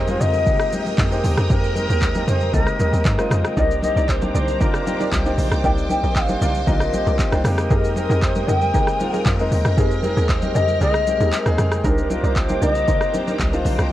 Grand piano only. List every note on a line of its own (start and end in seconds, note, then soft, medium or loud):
0.00 0.08 G#3 loud
0.00 0.08 A#3 medium
0.00 0.09 C4 medium
0.00 0.09 D#4 medium
0.00 0.48 G4 loud
0.08 0.39 G#3 medium
0.08 0.39 A#3 medium
0.08 0.39 C4 medium
0.08 0.40 D#4 medium
0.08 0.40 F4 medium
0.46 0.67 G#3 medium
0.46 0.67 A#3 medium
0.46 0.68 C4 medium
0.46 0.68 D#4 medium
0.46 0.68 G4 medium
0.72 1.03 G#3 medium
0.72 1.04 A#3 medium
0.72 1.04 C4 medium
0.72 1.04 D#4 medium
0.72 1.04 G4 medium
1.11 1.42 G#3 medium
1.11 1.42 A#3 medium
1.11 1.43 C4 medium
1.11 1.43 D#4 medium
1.11 1.43 G4 loud
1.49 1.71 G#3 medium
1.49 1.71 A#3 medium
1.49 1.71 C4 medium
1.49 1.71 D#4 medium
1.49 1.72 A#4 medium
1.75 2.07 G#3 medium
1.75 2.07 A#3 medium
1.75 2.07 C4 medium
1.75 2.08 D#4 medium
1.75 2.08 A#4 medium
2.14 2.46 G#3 medium
2.14 2.46 A#3 medium
2.14 2.46 C4 medium
2.14 2.46 D#4 medium
2.14 2.47 G4 medium
2.53 2.74 G#3 medium
2.53 2.74 A#3 medium
2.53 2.74 C4 medium
2.53 2.75 D#4 medium
2.53 2.75 G4 medium
2.78 3.10 G#3 medium
2.78 3.10 A#3 medium
2.78 3.11 C4 medium
2.78 3.11 D#4 medium
2.78 3.11 A#4 medium
3.18 3.49 G#3 loud
3.18 3.49 A#3 medium
3.18 3.50 C4 medium
3.18 3.50 D#4 medium
3.18 3.50 F4 loud
3.56 3.77 A#3 medium
3.56 3.78 C4 medium
3.56 3.78 D4 medium
3.56 3.78 D#4 medium
3.56 3.79 G4 medium
3.82 4.14 A#3 medium
3.82 4.14 C4 medium
3.82 4.14 D4 medium
3.82 4.15 D#4 medium
3.82 4.15 G4 medium
4.21 4.53 A#3 medium
4.21 4.53 C4 medium
4.21 4.53 D4 medium
4.21 4.53 D#4 medium
4.21 4.54 G4 medium
4.60 4.81 A#3 medium
4.60 4.81 C4 medium
4.60 4.82 D4 medium
4.60 4.82 D#4 medium
4.60 4.82 F4 medium
4.86 5.17 A#3 medium
4.86 5.17 C4 medium
4.86 5.18 D4 medium
4.86 5.18 D#4 medium
4.86 5.18 G4 medium
5.25 5.56 A#3 medium
5.25 5.56 C4 medium
5.25 5.56 D4 medium
5.25 5.57 D#4 medium
5.25 5.57 G4 loud
5.63 5.84 A#3 medium
5.63 5.85 C4 medium
5.63 5.85 D4 medium
5.63 5.85 D#4 medium
5.63 5.85 G4 medium
5.89 6.20 A#3 medium
5.89 6.21 C4 medium
5.89 6.21 D4 medium
5.89 6.21 D#4 medium
5.89 6.22 G4 medium
6.28 6.59 A#3 medium
6.28 6.60 C4 medium
6.28 6.60 D4 medium
6.28 6.60 D#4 medium
6.28 6.60 G4 medium
6.66 6.88 A#3 medium
6.66 6.88 C4 medium
6.66 6.88 D4 medium
6.66 6.88 D#4 medium
6.66 6.89 F4 medium
6.92 7.24 A#3 medium
6.92 7.24 C4 medium
6.92 7.25 D#4 medium
6.92 7.25 G4 medium
7.32 7.43 A#3 medium
7.32 7.44 C4 medium
7.32 7.45 D4 medium
7.32 7.44 D#4 medium
7.32 7.45 G4 loud
7.44 7.86 G#3 loud
7.44 7.87 A#3 medium
7.44 7.87 C4 medium
7.44 7.87 D#4 medium
7.44 7.87 G4 loud
7.96 8.27 G#3 medium
7.96 8.28 A#3 medium
7.96 8.28 C4 medium
7.96 8.28 D#4 medium
7.96 8.29 G4 medium
8.35 8.66 G#3 medium
8.35 8.67 A#3 medium
8.35 8.67 C4 medium
8.35 8.67 D#4 medium
8.35 8.67 G4 medium
8.74 8.95 G#3 medium
8.74 8.95 A#3 medium
8.74 8.95 C4 medium
8.74 8.96 D#4 medium
8.74 8.96 A#4 medium
8.99 9.31 G#3 medium
8.99 9.31 A#3 medium
8.99 9.31 C4 medium
8.99 9.32 D#4 medium
8.99 9.32 F4 medium
9.39 9.70 G#3 medium
9.39 9.70 A#3 medium
9.39 9.70 C4 medium
9.39 9.71 D#4 medium
9.39 9.71 A#4 loud
9.77 9.98 G#3 medium
9.77 9.98 A#3 medium
9.77 9.99 C4 medium
9.77 9.99 D#4 medium
9.77 9.99 G#4 medium
10.03 10.34 G#3 medium
10.03 10.35 A#3 medium
10.03 10.35 C4 medium
10.03 10.35 D#4 medium
10.03 10.35 G#4 medium
10.42 10.73 G#3 medium
10.42 10.74 A#3 medium
10.42 10.74 C4 medium
10.42 10.74 D#4 medium
10.42 10.74 G4 medium
10.80 11.02 G#3 medium
10.80 11.02 A#3 medium
10.80 11.02 C4 medium
10.80 11.02 D#4 medium
10.80 11.03 G#4 medium
11.06 11.38 G#3 medium
11.06 11.38 A#3 medium
11.06 11.38 C4 medium
11.06 11.39 D#4 medium
11.06 11.39 G4 medium
11.45 11.77 G#3 medium
11.45 11.77 A#3 medium
11.45 11.77 C4 medium
11.45 11.77 D#4 medium
11.45 11.78 G#4 loud
11.84 12.05 A#3 medium
11.84 12.05 C4 medium
11.84 12.06 D4 medium
11.84 12.06 D#4 medium
11.84 12.06 G4 medium
12.09 12.41 A#3 medium
12.09 12.41 C4 medium
12.09 12.42 D4 medium
12.09 12.42 D#4 medium
12.09 12.42 F4 medium
12.49 12.80 A#3 medium
12.49 12.80 C4 medium
12.49 12.81 D4 medium
12.49 12.81 D#4 medium
12.49 12.81 G4 medium
12.87 13.08 A#3 medium
12.87 13.09 C4 medium
12.87 13.09 D4 medium
12.87 13.09 D#4 medium
12.87 13.09 A#4 medium
13.13 13.45 A#3 medium
13.13 13.45 C4 medium
13.13 13.45 D4 medium
13.13 13.45 D#4 medium
13.13 13.46 G4 medium
13.52 13.84 A#3 medium
13.52 13.84 C4 medium
13.52 13.84 D4 medium
13.52 13.84 D#4 medium
13.52 13.85 F4 loud